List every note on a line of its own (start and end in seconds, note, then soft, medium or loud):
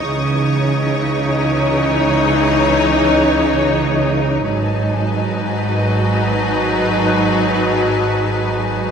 0.00 3.87 C#6 soft
0.00 2.76 D#6 soft
0.05 4.43 C#2 medium
0.05 4.43 C#3 medium
0.05 4.43 E3 medium
0.05 4.42 D#4 medium
0.05 4.42 C#5 medium
0.05 4.43 C#5 medium
0.05 4.42 D#5 medium
4.46 8.91 G#1 medium
4.46 8.91 G#2 medium
4.46 8.91 F#3 medium
4.46 8.91 D#4 medium
4.46 8.91 F#4 medium
4.46 8.91 B4 medium
4.46 8.91 D#5 medium
4.46 8.91 G#5 soft
4.46 8.91 A5 soft